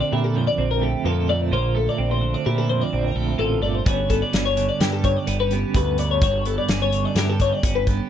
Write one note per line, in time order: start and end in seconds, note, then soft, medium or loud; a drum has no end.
0.00 2.20 D3 medium
0.00 0.80 A3 soft
0.00 0.57 C4 medium
0.00 0.12 F4 medium
0.00 0.12 D5 medium
0.12 0.48 A#2 medium
0.12 1.05 E4 soft
0.12 0.24 G4 medium
0.24 0.35 A4 medium
0.35 1.05 F2 medium
0.35 0.47 C5 medium
0.47 0.70 D5 medium
0.58 0.94 A#1 medium
0.58 1.49 C4 medium
0.71 0.82 A#4 medium
0.82 1.29 A3 medium
0.82 1.06 G4 medium
1.05 1.53 F2 medium
1.05 1.49 A#2 medium
1.05 1.49 F4 medium
1.05 1.29 A4 medium
1.29 1.55 A3 medium
1.29 1.41 D5 medium
1.41 1.52 C5 medium
1.51 1.87 A#1 medium
1.51 2.22 A#2 medium
1.51 2.46 F4 medium
1.51 1.76 C5 medium
1.75 3.15 A3 medium
1.75 1.88 A4 medium
1.89 2.11 D5 medium
1.98 2.34 A#1 medium
1.98 2.92 C4 medium
2.11 2.34 C5 medium
2.21 3.84 D3 medium
2.34 2.46 D5 medium
2.46 2.82 A#2 medium
2.46 3.39 E4 soft
2.46 2.58 G4 medium
2.58 2.69 A4 medium
2.69 3.40 F2 medium
2.69 2.81 C5 medium
2.81 3.05 D5 medium
2.93 3.11 A#1 medium
2.93 3.84 C4 medium
3.05 3.16 A#4 medium
3.15 3.37 A#1 medium
3.15 3.61 A3 medium
3.15 3.39 G4 medium
3.38 3.60 A1 medium
3.38 3.83 A#2 medium
3.38 3.84 F4 medium
3.38 3.62 A4 medium
3.62 3.86 G1 medium
3.62 3.86 A3 medium
3.62 3.75 D5 medium
3.75 3.87 C5 medium
3.85 4.22 G1 medium
3.85 5.03 G2 medium
3.85 4.55 D3 medium
3.85 4.09 B3 medium
3.85 4.32 C#4 medium
3.85 4.81 F#4 medium
3.85 4.10 C#5 medium
3.85 kick loud
3.85 closed hi-hat medium
4.09 5.26 B3 medium
4.09 4.22 A4 medium
4.09 kick medium
4.09 closed hi-hat medium
4.22 4.45 D5 medium
4.33 4.69 G1 medium
4.33 5.27 C#4 medium
4.33 snare loud
4.33 closed hi-hat medium
4.45 4.68 C#5 medium
4.56 6.92 D3 medium
4.56 closed hi-hat medium
4.69 4.81 D5 medium
4.80 5.16 G2 medium
4.80 4.92 G4 medium
4.80 5.75 G4 medium
4.80 snare loud
4.80 closed hi-hat medium
4.92 5.04 A4 medium
5.03 5.73 G2 medium
5.03 5.17 C#5 medium
5.03 kick medium
5.03 closed hi-hat medium
5.17 5.40 D5 medium
5.27 5.63 G1 medium
5.27 5.40 B3 medium
5.27 closed hi-hat medium
5.40 6.22 C#4 soft
5.40 5.52 B4 medium
5.51 5.98 B3 medium
5.51 5.75 G4 medium
5.51 closed hi-hat medium
5.74 6.23 D2 medium
5.74 6.19 G2 medium
5.74 6.20 F#4 medium
5.74 5.99 B4 medium
5.74 kick medium
5.74 closed hi-hat medium
5.98 6.19 B3 medium
5.98 6.11 D5 medium
5.98 closed hi-hat medium
6.11 6.22 C#5 medium
6.22 6.58 G1 medium
6.22 7.39 G2 medium
6.22 7.17 F#4 medium
6.22 6.47 C#5 medium
6.22 kick loud
6.22 closed hi-hat medium
6.46 7.87 B3 medium
6.46 6.58 A4 medium
6.46 closed hi-hat medium
6.58 6.81 D5 medium
6.68 7.05 G1 medium
6.68 7.63 C#4 medium
6.68 snare loud
6.68 closed hi-hat medium
6.82 7.05 C#5 medium
6.92 8.10 D3 medium
6.92 closed hi-hat medium
7.05 7.17 D5 medium
7.15 7.51 G2 medium
7.15 7.29 E4 medium
7.15 7.29 G4 medium
7.15 snare loud
7.15 closed hi-hat medium
7.29 8.10 G4 soft
7.29 7.40 A4 medium
7.40 8.10 G2 medium
7.40 7.53 C#5 medium
7.40 kick medium
7.40 closed hi-hat medium
7.53 7.76 D5 medium
7.63 7.99 G1 medium
7.63 8.10 C#4 medium
7.63 kick loud
7.63 closed hi-hat medium
7.75 7.87 B4 medium
7.87 8.10 B3 medium
7.87 8.10 G4 medium
7.87 kick medium
7.87 closed hi-hat medium